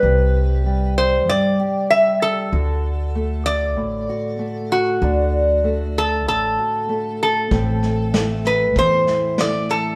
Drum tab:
SD |--------|--------|--------|oooooooo|
BD |--------|--------|--------|o---o---|